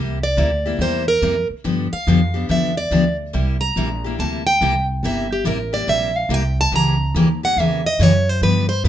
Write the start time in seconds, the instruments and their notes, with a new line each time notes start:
Already playing: upright bass C2, steel-string acoustic guitar C3 G3 A#3 E4 G4
0.23 steel-string acoustic guitar D5
0.37 upright bass D2, steel-string acoustic guitar C3 G3 A#3 E4 G4
0.66 steel-string acoustic guitar A#3 E4 G4
0.79 upright bass E2, steel-string acoustic guitar C3 G3 A#3 E4 G4 C5
1.08 steel-string acoustic guitar A#4
1.22 upright bass F2, steel-string acoustic guitar C3 G3 A#3 E4 G4
1.50 muted upright bass stroke
1.64 upright bass G2, steel-string acoustic guitar D3 F3 B3 D4 G4
1.93 steel-string acoustic guitar F5, muted upright bass stroke
2.07 upright bass F2, steel-string acoustic guitar D3 F3 B3 D4 G4
2.34 steel-string acoustic guitar B3 D4 G4
2.49 upright bass E2, steel-string acoustic guitar D3 F3 B3 D4 G4 E5
2.77 steel-string acoustic guitar D5
2.91 upright bass D2, steel-string acoustic guitar D3 F3 B3 D4 G4
3.33 upright bass C2, steel-string acoustic guitar C3 G3 A#3 E4 G4
3.61 steel-string acoustic guitar A#5
3.76 upright bass A#1, steel-string acoustic guitar C3 G3 A#3 E4 G4
4.04 steel-string acoustic guitar A#3 E4 G4
4.19 upright bass D2, steel-string acoustic guitar C3 G3 A#3 E4 G4 A5
4.47 steel-string acoustic guitar G5
4.61 upright bass C2, steel-string acoustic guitar C3 G3 A#3 E4 G4
5.03 upright bass G1, steel-string acoustic guitar C3 G3 A#3 E4 G4 E5
5.33 steel-string acoustic guitar G4
5.45 upright bass A1, steel-string acoustic guitar C3 G3 A#3 E4 G4 A#4
5.73 steel-string acoustic guitar A#3 E4 G4 D5
5.87 upright bass A#1, steel-string acoustic guitar C3 G3 A#3 E4 G4 E5
6.17 steel-string acoustic guitar F5
6.29 upright bass C2, steel-string acoustic guitar C3 G3 A#3 E4 G4
6.34 steel-string acoustic guitar G5
6.61 steel-string acoustic guitar A5
6.72 upright bass C#2, steel-string acoustic guitar C#3 E3 A#3 C#4 G4 A#5
7.14 upright bass D#2, steel-string acoustic guitar C#3 E3 A#3 C#4 G4
7.43 steel-string acoustic guitar A#3 C#4 G4 F#5
7.57 upright bass E2, steel-string acoustic guitar C#3 E3 A#3 C#4 G4 E5
7.86 steel-string acoustic guitar D#5
7.99 upright bass F#2, steel-string acoustic guitar C#3 E3 A#3 C#4 G4 C#5
8.29 steel-string acoustic guitar C5
8.41 upright bass G2, steel-string acoustic guitar D3 F3 B3 D4 G4 B4
8.69 steel-string acoustic guitar C5
8.84 upright bass F2, steel-string acoustic guitar D3 B4